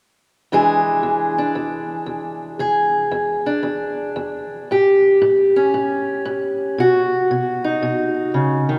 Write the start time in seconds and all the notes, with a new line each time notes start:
0.52 E2 E3 G#3 D4 G#4
1.03 E2
1.38 D4
1.55 E2
2.06 E2
2.59 E2 G#4
3.11 E2
3.46 D4
3.63 E2
4.16 E2
4.71 A2 G4
5.22 A2
5.56 C#4
5.74 A2
6.25 A2
6.78 B2 F#4
7.31 B2
7.64 D#4
7.83 B2
8.34 C#3
8.69 D#3